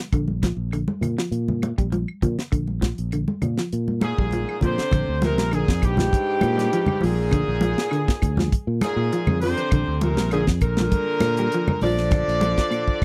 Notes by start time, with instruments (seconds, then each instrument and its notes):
0.12 fingered electric bass A#1, clean electric guitar D3, kick, closed hi-hat, claves
0.28 high conga
0.43 clean electric guitar F3, kick, snare, closed hi-hat, high conga
0.57 fingered electric bass A#1
0.72 clean electric guitar D3, closed hi-hat, claves
0.88 high conga
1.01 fingered electric bass A#2, closed hi-hat, low conga, claves
1.18 clean electric guitar F3, snare
1.32 fingered electric bass A#2, closed hi-hat
1.48 high conga, low conga
1.62 closed hi-hat, high conga, claves
1.78 fingered electric bass A#1, clean electric guitar G3, kick, closed hi-hat
1.92 clean electric guitar F3, closed hi-hat, high conga
2.08 claves
2.22 fingered electric bass A#2, clean electric guitar F3, kick, closed hi-hat, low conga
2.38 muted fingered electric bass stroke, snare
2.52 fingered electric bass A#1, clean electric guitar D3, kick, closed hi-hat, claves
2.67 high conga
2.81 clean electric guitar F3, kick, snare, closed hi-hat, high conga
2.98 fingered electric bass A#1, closed hi-hat
3.12 clean electric guitar D3, closed hi-hat, claves
3.28 high conga
3.42 fingered electric bass A#2, closed hi-hat, low conga, claves
3.58 clean electric guitar F3, snare
3.73 fingered electric bass A#2, closed hi-hat
3.88 high conga
4.01 baritone saxophone G#2, tenor saxophone A#2, horn section G#4, closed hi-hat, high conga, claves
4.18 fingered electric bass A#1, clean electric guitar G3, kick
4.31 clean electric guitar F3, closed hi-hat, high conga
4.49 claves
4.61 fingered electric bass A#2, baritone saxophone C3, tenor saxophone D3, clean electric guitar F3, kick, closed hi-hat, low conga
4.65 horn section C5
4.78 muted fingered electric bass stroke, snare
4.91 fingered electric bass A#1, clean electric guitar D3, kick, closed hi-hat, low conga, claves
5.09 fingered electric bass D2
5.22 baritone saxophone A#2, tenor saxophone C3, clean electric guitar F3, horn section A#4, snare, closed hi-hat, high conga
5.38 fingered electric bass A#1, snare, high conga
5.52 baritone saxophone G#2, tenor saxophone A#2, clean electric guitar D3, horn section G#4, closed hi-hat, claves
5.68 fingered electric bass F2, kick, snare
5.82 fingered electric bass A#1, baritone saxophone G2, tenor saxophone G#2, horn section G4, kick, closed hi-hat, claves
5.97 clean electric guitar F3, snare, high conga, low conga
6.13 kick, closed hi-hat
6.41 fingered electric bass A#2, closed hi-hat, high conga, claves
6.58 clean electric guitar G3, snare, closed hi-hat
6.73 clean electric guitar F3, closed hi-hat
6.86 high conga, low conga, claves
7.01 fingered electric bass A#1, baritone saxophone G#2, clean electric guitar F3, horn section G#4, open hi-hat, high conga
7.05 tenor saxophone A#2
7.31 clean electric guitar D3, kick, closed hi-hat, low conga, claves
7.48 fingered electric bass A#1
7.61 clean electric guitar F3, closed hi-hat, high conga
7.78 snare
7.91 clean electric guitar D3, closed hi-hat, claves
8.08 kick, snare
8.22 fingered electric bass D2, kick, closed hi-hat, claves
8.37 clean electric guitar F3, snare, high conga, low conga
8.52 kick, closed hi-hat
8.67 fingered electric bass A#2
8.81 baritone saxophone G#2, tenor saxophone A#2, horn section G#4, snare, closed hi-hat, high conga, claves
8.96 fingered electric bass A#2, muted clean electric guitar stroke
9.12 clean electric guitar F3, closed hi-hat
9.27 fingered electric bass F2, high conga, low conga, claves
9.41 baritone saxophone C3, tenor saxophone D3, clean electric guitar F3, horn section C5, open hi-hat
9.58 closed hi-hat
9.71 fingered electric bass A#1, clean electric guitar D3, kick, closed hi-hat, low conga, claves
9.88 fingered electric bass D2
10.01 baritone saxophone A#2, tenor saxophone C3, clean electric guitar F3, horn section A#4, closed hi-hat, high conga
10.17 fingered electric bass A#1, snare, high conga
10.31 baritone saxophone G#2, tenor saxophone A#2, clean electric guitar D3, horn section G#4, closed hi-hat, claves
10.47 fingered electric bass F2, kick, snare
10.61 fingered electric bass A#1, baritone saxophone A#2, tenor saxophone D3, horn section A#4, kick, closed hi-hat, claves
10.77 clean electric guitar F3, snare, high conga
10.91 kick, closed hi-hat, high conga
11.20 fingered electric bass A#2, snare, closed hi-hat, high conga, claves
11.37 clean electric guitar G3, closed hi-hat
11.52 clean electric guitar F3, closed hi-hat
11.68 high conga, low conga, claves
11.81 fingered electric bass A#1, baritone saxophone D3, tenor saxophone F3, clean electric guitar F3, horn section D5, open hi-hat, high conga
11.97 snare
12.11 muted clean electric guitar stroke, kick, snare, closed hi-hat, low conga, claves
12.28 fingered electric bass A#1, snare
12.41 clean electric guitar F3, closed hi-hat, high conga
12.58 kick, snare
12.71 clean electric guitar A#2, closed hi-hat, claves
12.88 kick